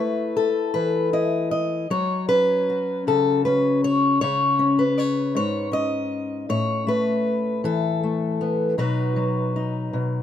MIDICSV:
0, 0, Header, 1, 2, 480
1, 0, Start_track
1, 0, Tempo, 774194
1, 1179, Time_signature, 6, 3, 24, 8
1, 2139, Tempo, 765306
1, 6389, End_track
2, 0, Start_track
2, 0, Title_t, "Steel-string acoustic guitar"
2, 0, Program_c, 0, 25
2, 0, Note_on_c, 0, 57, 70
2, 0, Note_on_c, 0, 64, 52
2, 0, Note_on_c, 0, 71, 76
2, 227, Note_on_c, 0, 69, 84
2, 450, Note_off_c, 0, 71, 0
2, 458, Note_on_c, 0, 71, 89
2, 464, Note_on_c, 0, 52, 55
2, 694, Note_off_c, 0, 64, 0
2, 698, Note_off_c, 0, 71, 0
2, 700, Note_on_c, 0, 64, 54
2, 702, Note_on_c, 0, 75, 82
2, 931, Note_off_c, 0, 75, 0
2, 938, Note_on_c, 0, 75, 83
2, 943, Note_off_c, 0, 69, 0
2, 1150, Note_off_c, 0, 57, 0
2, 1151, Note_off_c, 0, 64, 0
2, 1153, Note_off_c, 0, 52, 0
2, 1179, Note_off_c, 0, 75, 0
2, 1180, Note_on_c, 0, 54, 73
2, 1184, Note_on_c, 0, 73, 88
2, 1415, Note_off_c, 0, 73, 0
2, 1417, Note_on_c, 0, 71, 88
2, 1422, Note_on_c, 0, 61, 60
2, 1672, Note_on_c, 0, 66, 45
2, 1898, Note_off_c, 0, 71, 0
2, 1904, Note_on_c, 0, 49, 69
2, 1908, Note_on_c, 0, 69, 88
2, 2137, Note_off_c, 0, 69, 0
2, 2139, Note_on_c, 0, 71, 79
2, 2143, Note_off_c, 0, 61, 0
2, 2145, Note_on_c, 0, 61, 55
2, 2379, Note_off_c, 0, 71, 0
2, 2385, Note_on_c, 0, 73, 90
2, 2595, Note_off_c, 0, 66, 0
2, 2609, Note_off_c, 0, 73, 0
2, 2617, Note_on_c, 0, 73, 98
2, 2618, Note_off_c, 0, 54, 0
2, 2620, Note_off_c, 0, 49, 0
2, 2627, Note_on_c, 0, 49, 70
2, 2854, Note_off_c, 0, 61, 0
2, 2854, Note_on_c, 0, 61, 58
2, 2978, Note_on_c, 0, 71, 73
2, 3089, Note_off_c, 0, 73, 0
2, 3097, Note_on_c, 0, 73, 89
2, 3329, Note_on_c, 0, 44, 71
2, 3332, Note_off_c, 0, 73, 0
2, 3338, Note_off_c, 0, 49, 0
2, 3340, Note_on_c, 0, 73, 95
2, 3558, Note_off_c, 0, 61, 0
2, 3560, Note_on_c, 0, 61, 49
2, 3568, Note_off_c, 0, 73, 0
2, 3570, Note_on_c, 0, 75, 97
2, 3574, Note_off_c, 0, 71, 0
2, 4044, Note_off_c, 0, 44, 0
2, 4047, Note_on_c, 0, 45, 69
2, 4048, Note_off_c, 0, 75, 0
2, 4051, Note_on_c, 0, 73, 91
2, 4280, Note_off_c, 0, 61, 0
2, 4283, Note_on_c, 0, 57, 60
2, 4288, Note_off_c, 0, 73, 0
2, 4293, Note_on_c, 0, 71, 92
2, 4767, Note_on_c, 0, 52, 66
2, 4770, Note_off_c, 0, 71, 0
2, 4774, Note_on_c, 0, 69, 87
2, 5006, Note_off_c, 0, 57, 0
2, 5015, Note_on_c, 0, 57, 53
2, 5249, Note_on_c, 0, 59, 50
2, 5459, Note_off_c, 0, 45, 0
2, 5460, Note_off_c, 0, 52, 0
2, 5464, Note_off_c, 0, 57, 0
2, 5481, Note_on_c, 0, 47, 68
2, 5483, Note_on_c, 0, 54, 48
2, 5484, Note_off_c, 0, 59, 0
2, 5487, Note_off_c, 0, 69, 0
2, 5487, Note_on_c, 0, 63, 55
2, 5490, Note_on_c, 0, 71, 71
2, 5491, Note_on_c, 0, 66, 53
2, 5714, Note_off_c, 0, 54, 0
2, 5722, Note_on_c, 0, 54, 56
2, 5963, Note_off_c, 0, 63, 0
2, 5971, Note_on_c, 0, 63, 43
2, 6198, Note_off_c, 0, 47, 0
2, 6206, Note_on_c, 0, 47, 66
2, 6389, Note_off_c, 0, 47, 0
2, 6389, Note_off_c, 0, 54, 0
2, 6389, Note_off_c, 0, 63, 0
2, 6389, Note_off_c, 0, 66, 0
2, 6389, Note_off_c, 0, 71, 0
2, 6389, End_track
0, 0, End_of_file